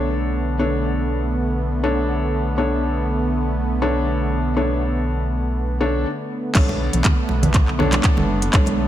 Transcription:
Already playing: analog synth bass B1, analog synth pad D3 A3 B3, felt piano D4 A4 C#5
0.59 felt piano D4 A4 C#5
1.84 felt piano D4 A4 C#5
2.58 felt piano D4 A4 C#5
3.82 felt piano D4 A4 C#5
4.57 felt piano D4 A4 C#5
5.81 felt piano D4 A4 C#5
6.55 analog synth bass B1, analog synth pad D3 A3 B3, felt piano D4 A4 C#5, kick, clap, closed hi-hat, crash, high conga
6.69 muted conga, high conga
6.93 analog synth bass B1, closed hi-hat, mid tom
7.04 kick, clap, closed hi-hat, muted conga, low conga
7.29 analog synth bass B1, muted conga
7.43 closed hi-hat, mid tom, low conga
7.54 kick, clap, closed hi-hat, muted conga
7.68 analog synth bass B1, clap
7.79 felt piano D4 A4 C#5, low conga
7.92 clap, closed hi-hat, muted conga, high conga
8.04 kick, clap, closed hi-hat, mid tom
8.17 analog synth bass F#1, muted conga, high conga, low conga
8.42 closed hi-hat, muted conga
8.53 analog synth bass B1, felt piano D4 A4 C#5, kick, clap, closed hi-hat, high conga
8.66 closed hi-hat, muted conga, high conga

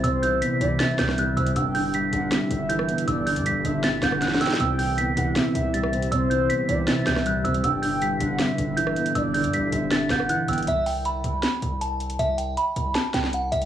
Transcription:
Already playing: felt piano C3 E3 G3 B3 C4, ambient pad C3 G3 E4 G4
0.04 808-style bass C2, felt piano C3, soft synth lead C5, synth bell E6, closed hi-hat
0.23 felt piano E3, synth bell G6, closed hi-hat
0.42 felt piano B3, synth bell B6, closed hi-hat
0.61 808-style bass C2, felt piano E3, soft synth lead D5, closed hi-hat
0.79 felt piano C3, soft synth lead E5, synth bell A6, snare, closed hi-hat
0.99 808-style bass C2, felt piano E3, synth bell G6, cross-stick, snare, closed hi-hat
1.09 cross-stick, snare
1.18 felt piano G3, synth bell F#6, closed hi-hat
1.37 808-style bass C2, felt piano C4, synth bell E6, closed hi-hat
1.47 closed hi-hat
1.56 808-style bass G1, felt piano G2, ambient pad D3, soft synth lead G5, synth bell E6, closed hi-hat
1.75 felt piano D3, synth bell G6, open hi-hat
1.94 felt piano G3, synth bell B6, closed hi-hat
2.13 808-style bass G1, felt piano D3, soft synth lead F#5, closed hi-hat
2.32 felt piano G2, soft synth lead E5, snare, closed hi-hat
2.51 808-style bass G1, felt piano D3, closed hi-hat
2.69 felt piano E3, synth bell G6, closed hi-hat
2.79 cross-stick
2.89 felt piano B3, closed hi-hat
2.98 closed hi-hat
3.08 808-style bass G1, felt piano G2, soft synth lead D5, synth bell E6, closed hi-hat
3.26 felt piano D3, synth bell G6, closed hi-hat, open hi-hat
3.36 808-style bass G2, closed hi-hat
3.46 felt piano G3, synth bell B6, closed hi-hat
3.50 808-style bass G1
3.65 808-style bass G1, felt piano D3, soft synth lead E5, closed hi-hat
3.84 felt piano G2, synth bell A6, snare, closed hi-hat
4.03 808-style bass G1, felt piano D3, soft synth lead F#5, synth bell G6, cross-stick, snare, closed hi-hat
4.12 cross-stick
4.22 felt piano E3, synth bell F#6, snare, closed hi-hat
4.28 snare
4.34 snare
4.41 felt piano B3, soft synth lead G5, synth bell E6, snare, closed hi-hat
4.46 snare, closed hi-hat
4.50 snare, closed hi-hat
4.55 closed hi-hat
4.59 808-style bass C2, ambient pad C3 G3, felt piano C3, soft synth lead G5, synth bell E6, closed hi-hat
4.79 felt piano E3, synth bell G6, open hi-hat
4.98 felt piano B3, synth bell B6, closed hi-hat
5.17 808-style bass C2, felt piano E3, soft synth lead F#5, closed hi-hat
5.36 felt piano C3, soft synth lead E5, snare, closed hi-hat
5.55 808-style bass C2, felt piano E3, closed hi-hat
5.74 felt piano G3, synth bell A6, closed hi-hat
5.83 cross-stick
5.93 felt piano C4, closed hi-hat
6.02 closed hi-hat
6.11 808-style bass C2, felt piano C3, soft synth lead C5, synth bell E6, closed hi-hat
6.30 felt piano E3, synth bell G6, closed hi-hat
6.50 felt piano B3, synth bell B6, closed hi-hat
6.69 808-style bass C2, felt piano E3, soft synth lead D5, closed hi-hat
6.87 felt piano C3, soft synth lead E5, synth bell A6, snare, closed hi-hat
7.07 808-style bass C2, felt piano E3, synth bell G6, cross-stick, snare, closed hi-hat
7.16 cross-stick, snare
7.26 felt piano G3, synth bell F#6, closed hi-hat
7.44 808-style bass C2, felt piano C4, synth bell E6, closed hi-hat
7.54 closed hi-hat
7.63 808-style bass G1, felt piano G2, ambient pad D3 E4 B4, soft synth lead G5, synth bell E6, closed hi-hat
7.82 felt piano D3, synth bell G6, open hi-hat
8.01 felt piano G3, synth bell B6, closed hi-hat
8.20 808-style bass G1, felt piano D3, soft synth lead F#5, closed hi-hat
8.39 felt piano G2, soft synth lead E5, snare, closed hi-hat
8.58 808-style bass G1, felt piano D3, closed hi-hat
8.77 felt piano E3, synth bell G6, closed hi-hat
8.87 cross-stick
8.97 felt piano B3, closed hi-hat
9.06 closed hi-hat
9.15 808-style bass G1, felt piano G2, soft synth lead D5, synth bell E6, closed hi-hat
9.34 felt piano D3, synth bell G6, closed hi-hat, open hi-hat
9.44 808-style bass G2, closed hi-hat
9.53 felt piano G3, synth bell B6, closed hi-hat
9.58 808-style bass G1
9.72 808-style bass G1, felt piano D3, soft synth lead E5, closed hi-hat
9.91 felt piano G2, synth bell A6, snare, closed hi-hat
10.10 808-style bass G1, felt piano D3, soft synth lead F#5, synth bell G6, cross-stick, snare, closed hi-hat
10.20 cross-stick
10.29 felt piano E3, synth bell F#6, closed hi-hat
10.48 808-style bass G1, felt piano B3, soft synth lead G5, synth bell E6, closed hi-hat
10.53 closed hi-hat
10.58 closed hi-hat
10.63 closed hi-hat
10.67 808-style bass C2, synth bell E5, closed hi-hat
10.86 synth bell G5, open hi-hat
11.05 synth bell B5, closed hi-hat
11.24 808-style bass C2, closed hi-hat
11.43 snare, closed hi-hat
11.62 808-style bass C2, closed hi-hat
11.81 synth bell A5, closed hi-hat
12.00 closed hi-hat
12.10 closed hi-hat
12.19 808-style bass C2, synth bell E5, closed hi-hat
12.38 synth bell G5, closed hi-hat
12.57 synth bell B5, closed hi-hat
12.76 808-style bass C2, closed hi-hat
12.95 synth bell A5, snare, closed hi-hat
13.14 808-style bass C2, synth bell G5, snare, closed hi-hat
13.24 snare
13.33 synth bell F#5, closed hi-hat
13.52 808-style bass C2, synth bell E5, closed hi-hat
13.62 closed hi-hat

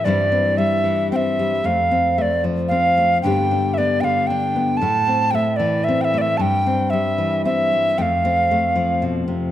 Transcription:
0.04 nylon-string guitar G2 E3 G3 C4 E4, tin whistle D5
0.32 nylon-string guitar C4
0.57 nylon-string guitar G3, tin whistle E5
0.84 nylon-string guitar E3
1.12 nylon-string guitar C4, tin whistle G5
1.16 tin whistle E5
1.39 nylon-string guitar G3
1.64 nylon-string guitar F2 A3, tin whistle F5
1.91 nylon-string guitar C4
2.18 nylon-string guitar A3, tin whistle D5 E5
2.44 nylon-string guitar F3
2.68 nylon-string guitar C4, tin whistle F5
2.98 nylon-string guitar A3
3.22 nylon-string guitar G2 D3 B3 D4, tin whistle G5
3.27 nylon-string guitar G4
3.51 nylon-string guitar D4
3.74 tin whistle D5 E5
3.78 nylon-string guitar B3
4.01 nylon-string guitar D3, tin whistle F5 G5
4.27 nylon-string guitar D4, tin whistle G5
4.56 nylon-string guitar B3
4.77 tin whistle A5
4.81 nylon-string guitar A2 A3
5.08 nylon-string guitar C4
5.31 nylon-string guitar A3, tin whistle G5
5.35 tin whistle E5
5.56 nylon-string guitar E3, tin whistle D5
5.84 tin whistle E5
5.89 nylon-string guitar C4
6.01 tin whistle E5 G5
6.14 nylon-string guitar A3
6.18 tin whistle D5 E5
6.37 nylon-string guitar G2 G3, tin whistle G5 A5
6.67 nylon-string guitar C4
6.90 nylon-string guitar G3, tin whistle E5
7.18 nylon-string guitar E3
7.45 nylon-string guitar C4, tin whistle E5
7.73 nylon-string guitar G3
7.98 nylon-string guitar F2 A3, tin whistle F5 G5
8.25 nylon-string guitar C4
8.51 nylon-string guitar A3
8.76 nylon-string guitar F3
9.02 nylon-string guitar B2
9.28 nylon-string guitar C3

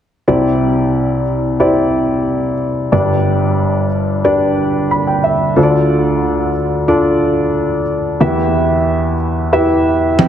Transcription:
0.28 grand piano C2 C3 E4 G4 C5 D5
1.60 grand piano E4 G4 C5 D5
2.92 grand piano G1 G2 D4 G4 B4 D5
4.24 grand piano D4 G4 B4 D5
4.91 grand piano B5
5.07 grand piano G5
5.24 grand piano E5
5.56 grand piano D2 D3 D4 F4 A4 C5
5.63 grand piano D5
6.88 grand piano D4 F4 A4 D5
8.20 grand piano E2 E3 E4 G4 B4 E5
9.53 grand piano E4 G4 B4 E5
10.19 grand piano G5, high tom

